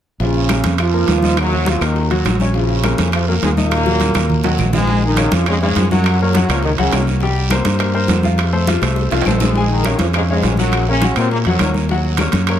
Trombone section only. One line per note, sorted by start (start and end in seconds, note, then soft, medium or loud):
0.22 0.76 C#3 medium
0.22 0.76 C#4 medium
0.81 1.39 F3 medium
0.81 1.39 F4 medium
1.39 1.68 F#2 medium
1.39 1.68 F#3 loud
1.68 1.82 F3 medium
1.68 1.82 F4 medium
1.84 2.12 D#3 medium
1.84 2.12 D#4 medium
2.55 3.09 C#3 medium
2.55 3.09 C#4 medium
3.13 3.27 F3 medium
3.13 3.27 F4 medium
3.28 3.36 F#2 medium
3.28 3.35 F#3 medium
3.43 3.50 G#2 medium
3.43 3.50 G#3 medium
3.57 4.55 A#2 medium
3.57 4.55 A#3 loud
4.74 5.01 G#2 medium
4.74 5.01 G#3 medium
5.05 5.34 D#3 medium
5.05 5.33 D#4 medium
5.34 5.48 F3 medium
5.34 5.48 F4 medium
5.48 5.60 G#2 medium
5.48 5.61 G#3 loud
5.62 5.89 G#2 medium
5.62 5.89 G#3 loud
5.90 6.17 F#2 medium
5.90 6.18 F#3 loud
6.22 6.48 F#2 medium
6.22 6.48 F#3 medium
6.51 6.65 F3 medium
6.51 6.64 F4 medium
6.64 6.72 D#3 medium
6.64 6.71 D#4 medium
6.79 7.06 C#3 medium
6.79 7.06 C#4 medium
9.42 9.69 G#2 medium
9.42 9.69 G#3 medium
9.70 9.97 D#3 medium
9.70 9.98 D#4 medium
10.01 10.07 F3 medium
10.01 10.07 F4 medium
10.15 10.22 G#2 medium
10.15 10.22 G#3 medium
10.30 10.57 G#2 medium
10.30 10.56 G#3 medium
10.59 10.86 F#2 medium
10.59 10.86 F#3 medium
10.89 11.15 C#3 medium
10.89 11.15 C#4 loud
11.17 11.31 C3 medium
11.17 11.31 C4 medium
11.32 11.38 A#2 medium
11.32 11.38 A#3 loud
11.46 11.73 F#2 medium
11.46 11.73 F#3 medium